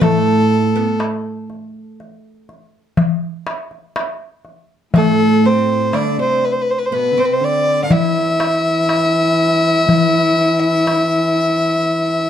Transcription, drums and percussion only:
0.02 darbuka dum
0.51 darbuka ka
1.00 darbuka tek
1.50 darbuka ka
2.00 darbuka ka
2.49 darbuka ka
2.97 darbuka dum
3.47 darbuka tek
3.71 darbuka ka
3.96 darbuka tek
4.45 darbuka ka
4.94 darbuka dum
5.44 darbuka ka
5.93 darbuka tek
6.43 darbuka ka
6.92 darbuka ka
7.42 darbuka ka
7.91 darbuka dum
8.40 darbuka tek
8.89 darbuka tek
9.39 darbuka ka
9.89 darbuka dum
10.38 darbuka ka
10.87 darbuka tek
11.86 darbuka ka

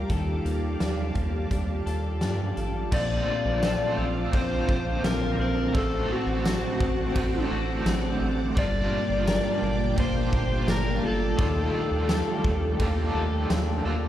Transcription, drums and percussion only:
0.10 kick, closed hi-hat
0.46 closed hi-hat
0.80 snare, closed hi-hat
1.15 kick, closed hi-hat
1.51 kick, closed hi-hat
1.87 closed hi-hat
2.21 snare, closed hi-hat
2.57 closed hi-hat
2.92 kick, crash
3.63 snare, ride, tambourine
4.33 kick, ride
4.69 kick
5.04 snare, ride, tambourine
5.75 kick, ride
6.45 snare, ride, tambourine
6.81 kick
7.15 kick, ride
7.86 snare, ride, tambourine
8.57 kick, ride
9.27 snare, ride, tambourine
9.98 kick, ride
10.33 kick
10.68 snare, ride, tambourine
11.38 kick, ride
12.09 snare, ride, tambourine
12.44 kick
12.80 kick, ride
13.50 snare, ride, tambourine

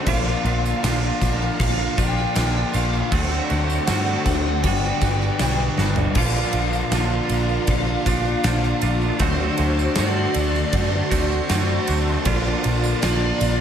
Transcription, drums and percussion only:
0.07 kick, tambourine, crash
0.28 tambourine
0.45 crash
0.65 tambourine
0.84 snare, tambourine, crash
1.22 kick, tambourine, crash
1.42 tambourine
1.60 kick, tambourine, crash
1.98 kick, tambourine, crash
2.17 tambourine
2.35 snare, tambourine, crash
2.74 tambourine, crash
2.93 tambourine
3.12 kick, crash
3.31 tambourine
3.50 crash
3.70 tambourine
3.87 snare, tambourine, crash
4.07 tambourine
4.26 kick, tambourine, crash
4.63 kick, tambourine, crash
4.82 tambourine
5.01 kick, tambourine, crash
5.22 tambourine
5.39 snare, tambourine, crash
5.59 tambourine
5.78 snare
5.96 floor tom, tambourine
6.15 kick, crash, tambourine
6.36 tambourine
6.53 ride
6.73 tambourine
6.92 snare, ride, tambourine
7.29 ride, tambourine
7.49 tambourine
7.67 kick, ride, tambourine
8.06 kick, ride, tambourine
8.25 tambourine
8.44 snare, ride, tambourine
8.63 snare
8.81 ride, tambourine
9.02 tambourine
9.19 kick, ride, tambourine
9.57 ride
9.79 tambourine
9.95 snare, ride, tambourine
10.34 ride, tambourine
10.54 snare, tambourine
10.73 kick, ride, tambourine
11.11 kick, ride, tambourine
11.32 tambourine
11.49 snare, ride, tambourine
11.87 ride, tambourine
12.08 tambourine
12.25 kick, ride, tambourine
12.46 tambourine
12.64 ride
12.84 tambourine
13.02 snare, ride, tambourine
13.41 ride, tambourine

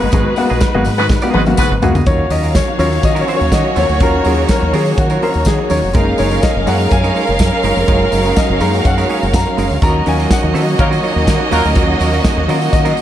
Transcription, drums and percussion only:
0.12 kick, closed hi-hat, tambourine
0.36 open hi-hat, tambourine
0.50 tambourine
0.61 kick, snare, closed hi-hat, tambourine
0.85 open hi-hat, tambourine
0.98 tambourine
1.09 kick, snare, tambourine
1.22 tambourine
1.34 high tom
1.46 high tom, tambourine
1.57 kick, mid tom, tambourine
1.82 floor tom, tambourine
1.95 floor tom, tambourine
2.06 kick, closed hi-hat, tambourine
2.30 open hi-hat, tambourine
2.44 tambourine
2.55 kick, snare, closed hi-hat, tambourine
2.79 open hi-hat, tambourine
2.92 tambourine
3.03 kick, closed hi-hat, tambourine
3.16 tambourine
3.28 open hi-hat
3.41 tambourine
3.52 kick, snare, closed hi-hat, tambourine
3.76 open hi-hat, tambourine
3.89 tambourine
4.00 kick, closed hi-hat, tambourine
4.25 open hi-hat, tambourine
4.49 kick, snare, closed hi-hat, tambourine
4.74 open hi-hat, tambourine
4.86 tambourine
4.98 kick, closed hi-hat, tambourine
5.10 tambourine
5.22 open hi-hat
5.34 tambourine
5.45 kick, snare, closed hi-hat, tambourine
5.70 open hi-hat, tambourine
5.93 kick, closed hi-hat, tambourine
6.18 open hi-hat, tambourine
6.31 tambourine
6.43 kick, snare, closed hi-hat, tambourine
6.67 open hi-hat, tambourine
6.80 tambourine
6.91 kick, closed hi-hat, tambourine
7.04 tambourine
7.16 open hi-hat
7.27 tambourine
7.39 kick, snare, closed hi-hat, tambourine
7.63 open hi-hat, tambourine
7.76 tambourine
7.88 kick, closed hi-hat, tambourine
8.12 open hi-hat, tambourine
8.25 tambourine
8.36 kick, snare, closed hi-hat, tambourine
8.60 open hi-hat, tambourine
8.74 tambourine
8.85 kick, closed hi-hat, tambourine
8.98 tambourine
9.09 open hi-hat
9.23 tambourine
9.34 kick, snare, closed hi-hat, tambourine
9.58 open hi-hat, tambourine
9.71 tambourine
9.82 kick, closed hi-hat, tambourine
10.06 open hi-hat, tambourine
10.20 tambourine
10.31 kick, snare, closed hi-hat, tambourine
10.55 open hi-hat, tambourine
10.68 tambourine
10.79 kick, closed hi-hat, tambourine
10.93 tambourine
11.03 open hi-hat
11.27 kick, snare, closed hi-hat, tambourine
11.51 open hi-hat, tambourine
11.65 tambourine
11.75 kick, closed hi-hat, tambourine
12.00 open hi-hat, tambourine
12.13 tambourine
12.25 kick, snare, closed hi-hat, tambourine
12.49 open hi-hat, tambourine
12.62 tambourine
12.73 kick, closed hi-hat, tambourine
12.85 tambourine
12.97 open hi-hat

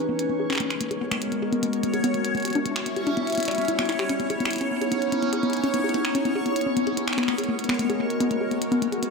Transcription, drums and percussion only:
0.19 closed hi-hat
0.50 finger snap, closed hi-hat
0.53 finger snap, closed hi-hat
0.55 finger snap, closed hi-hat
0.58 finger snap, closed hi-hat
0.70 finger snap, closed hi-hat
0.81 closed hi-hat
0.91 closed hi-hat
1.11 finger snap, closed hi-hat
1.22 closed hi-hat
1.32 closed hi-hat
1.53 closed hi-hat
1.63 closed hi-hat
1.73 closed hi-hat
1.83 closed hi-hat
1.94 closed hi-hat
2.04 closed hi-hat
2.14 closed hi-hat
2.25 closed hi-hat
2.35 closed hi-hat
2.37 closed hi-hat
2.40 closed hi-hat
2.43 closed hi-hat
2.45 closed hi-hat
2.48 closed hi-hat
2.50 closed hi-hat
2.53 closed hi-hat
2.55 closed hi-hat
2.66 closed hi-hat
2.76 finger snap, closed hi-hat
2.86 closed hi-hat
2.96 closed hi-hat
3.07 closed hi-hat
3.17 closed hi-hat
3.27 closed hi-hat
3.30 closed hi-hat
3.32 closed hi-hat
3.35 closed hi-hat
3.38 closed hi-hat
3.40 closed hi-hat
3.43 closed hi-hat
3.45 finger snap, closed hi-hat
3.48 closed hi-hat
3.51 closed hi-hat
3.55 closed hi-hat
3.58 closed hi-hat
3.62 closed hi-hat
3.65 closed hi-hat
3.68 closed hi-hat
3.79 finger snap, closed hi-hat
3.86 finger snap, closed hi-hat
3.89 closed hi-hat
3.92 closed hi-hat
3.99 finger snap, closed hi-hat
4.09 closed hi-hat
4.20 closed hi-hat
4.30 closed hi-hat
4.40 closed hi-hat
4.45 finger snap
4.51 closed hi-hat
4.53 closed hi-hat
4.56 closed hi-hat
4.58 closed hi-hat
4.61 closed hi-hat
4.82 closed hi-hat
4.92 closed hi-hat
5.02 closed hi-hat
5.12 closed hi-hat
5.23 closed hi-hat
5.33 closed hi-hat
5.43 closed hi-hat
5.50 closed hi-hat
5.53 closed hi-hat
5.57 closed hi-hat
5.64 closed hi-hat
5.74 closed hi-hat
5.89 closed hi-hat
5.94 closed hi-hat
6.05 finger snap, closed hi-hat
6.15 closed hi-hat
6.25 closed hi-hat
6.46 closed hi-hat
6.56 closed hi-hat
6.61 closed hi-hat
6.77 closed hi-hat
6.87 closed hi-hat
6.97 closed hi-hat
7.08 finger snap, closed hi-hat
7.13 finger snap
7.18 finger snap, closed hi-hat
7.23 finger snap
7.28 finger snap, closed hi-hat
7.38 closed hi-hat
7.44 closed hi-hat
7.59 closed hi-hat
7.64 closed hi-hat
7.69 finger snap, closed hi-hat
7.74 closed hi-hat
7.79 closed hi-hat
7.90 closed hi-hat
8.10 closed hi-hat
8.21 closed hi-hat
8.31 closed hi-hat
8.51 closed hi-hat
8.62 closed hi-hat
8.72 closed hi-hat
8.82 closed hi-hat
8.92 closed hi-hat
9.03 closed hi-hat

